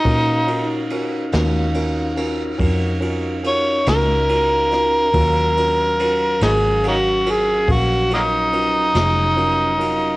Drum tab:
RD |xxxxxxxxxxxx|xxxxxxxxxxxx|
SD |---o-----o-o|---o-----o--|
BD |o-----o-----|o-----o-----|